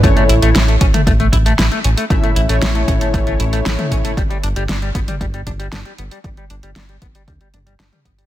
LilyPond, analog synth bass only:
\new Staff \with { instrumentName = "Analog synth bass" } { \clef bass \time 4/4 \key a \major \tempo 4 = 116 a,,16 r16 a,,16 a,,16 a,,8 a,,16 r16 a,,8 a,,8 a,,16 r16 a,,16 r16 | a,,16 r16 a,,16 a,,16 a,,8 a,,16 r16 a,,8 a,,8 a,,16 r16 a,,16 r16 | g,,16 r16 g,,16 g,,16 g,,8 g,,16 r16 g,,8 g,,8 g,,16 r16 g,,16 r16 | g,,16 r16 g,,16 g,,16 g,,8 g,,16 r16 d,16 r16 g,,8 g,,16 r16 g,,8 | }